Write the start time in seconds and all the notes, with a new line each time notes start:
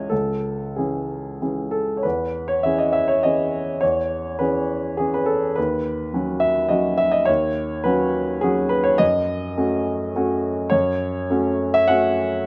Already playing: C#2 E3 C#4 G#4 C#5 D#5 E5
0.09 C#2 A4
0.76 E3 C#4 G#4
1.42 E3 C#4 G#4
1.71 A4
1.97 C#5
2.03 E2 B4
2.48 C#5
2.63 E3 C#4 G#4 E5
2.78 D#5
2.93 E5
3.08 C#5
3.23 E3 C#4 G#4 D#5
3.81 E2 C#5
4.39 E3 C#4 G#4 B4
4.97 E3 C#4 G#4
5.14 B4
5.26 A4
5.56 D#2 B4
6.14 F#3 C#4 F#4
6.40 E5
6.69 F#3 C#4 F#4 D#5
6.98 E5
7.11 D#5
7.25 D#2 C#5
7.84 F#3 C#4 F#4 B4
8.41 F#3 C#4 F#4 G#4
8.69 B4
8.84 C#5
8.98 F#2 D#5
9.57 A3 C#4 F#4
10.15 A3 C#4 F#4
10.70 F#2 C#5
11.30 A3 C#4 F#4
11.74 E5
11.88 A3 C#4 F#4 F#5